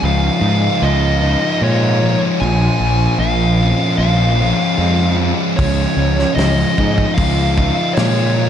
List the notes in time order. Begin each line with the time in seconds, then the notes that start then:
Already playing: C#3 G#3 C#4 F4
0.02 C#2 F3 F5
0.41 G#2 D#4
0.82 C#2 F4 D#5
1.22 D#4
1.61 A#2 G#3 C#5
2.02 F3
2.40 A#1 A#2 G#5
2.80 A#1
3.19 A#1 F3 F5
3.60 C#4
3.98 A#1 F4 F5
4.41 C#4
4.78 F2 G#3
5.20 F3
5.57 C#2 C#3 C#5, kick, open hi-hat
5.97 C#2
6.19 snare
6.35 C#2 F3 D#5, open hi-hat
6.39 snare
6.78 G#2 D#4, kick
6.98 kick
7.14 C#2 F4 F5, kick
7.18 open hi-hat
7.58 D#4, kick
7.93 A#2 G#3 C#5, open hi-hat
7.98 snare
8.37 F3